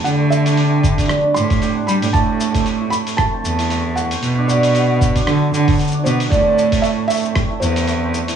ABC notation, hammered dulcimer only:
X:1
M:4/4
L:1/16
Q:"Swing 16ths" 1/4=115
K:Ador
V:1 name="Hammered dulcimer"
G, A,2 D G,2 G, A,2 D d z G D g G, | A,2 A, C2 E A,2 A, C2 E A,2 A, C | z D F,2 F, B,2 D F,2 F, B,2 D F,2 | A, C2 E A,2 A, C2 E A,2 A, C2 E |]